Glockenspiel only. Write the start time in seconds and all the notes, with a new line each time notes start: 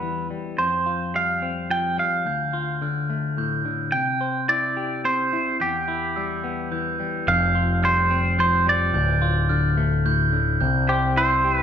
0.59 G6
1.15 F6
1.70 G6
2.26 G6
2.82 F6
3.38 G6
3.94 G6
4.49 E6
5.05 G6
5.60 G6
6.16 E6
6.72 G6
7.28 G6
7.83 F6
8.39 G6
8.94 G6
9.49 F6
10.06 G6
10.61 G6
11.17 E6